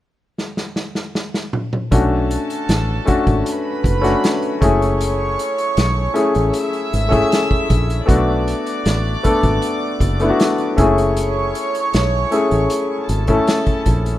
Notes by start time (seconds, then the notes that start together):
0.38 snare
0.57 snare
0.76 snare
0.95 snare
1.15 snare
1.34 snare
1.53 mid tom
1.73 mid tom
1.91 B1 A3 C#4 D4 F#4 A4 A5, kick, closed hi-hat
2.31 closed hi-hat
2.50 closed hi-hat
2.69 A1, snare, closed hi-hat
3.05 A3 C#4 D4 F#4, kick, closed hi-hat
3.27 G#1, kick, closed hi-hat
3.46 B4 B5, closed hi-hat
3.84 F#1, kick, closed hi-hat
4.01 A3 C#4 D4 F#4, snare, closed hi-hat
4.24 snare, closed hi-hat
4.42 closed hi-hat
4.61 F#1 A3 C#4 E4 G#4 C#5 C#6, kick, closed hi-hat
4.82 closed hi-hat
5.01 closed hi-hat
5.39 closed hi-hat
5.58 closed hi-hat
5.77 B1, snare, closed hi-hat
6.14 A3 C#4 E4 G#4, closed hi-hat
6.35 A1, closed hi-hat
6.54 E5 E6, closed hi-hat
6.73 closed hi-hat
6.93 G#1, closed hi-hat
7.09 A3 C#4 E4 G#4, kick, closed hi-hat
7.32 snare, closed hi-hat
7.51 kick
7.70 A#1, kick, closed hi-hat
7.90 closed hi-hat
8.06 B1 A3 B3 D4 F#4 D5, kick, closed hi-hat
8.10 D6
8.48 closed hi-hat
8.66 closed hi-hat
8.85 A1, snare, closed hi-hat
9.23 A3 B3 D4 A4, kick, closed hi-hat
9.43 G#1, kick, closed hi-hat
9.62 closed hi-hat
10.00 F#1, kick, closed hi-hat
10.20 A3 B3 D4 E4, closed hi-hat
10.30 F#4
10.40 snare, closed hi-hat
10.58 closed hi-hat
10.77 F#1 A3 C#4 E4 G#4 C#5 C#6, kick, closed hi-hat
10.98 closed hi-hat
11.16 closed hi-hat
11.55 closed hi-hat
11.75 closed hi-hat
11.93 B1, snare, closed hi-hat
12.31 A3 C#4 E4 G#4, closed hi-hat
12.51 A1, closed hi-hat
12.70 closed hi-hat
13.09 G#1 A4 A5, closed hi-hat
13.27 A3 C#4 E4 A4, kick, closed hi-hat
13.47 snare, closed hi-hat
13.66 kick, closed hi-hat
13.86 A#1, kick, closed hi-hat
14.06 closed hi-hat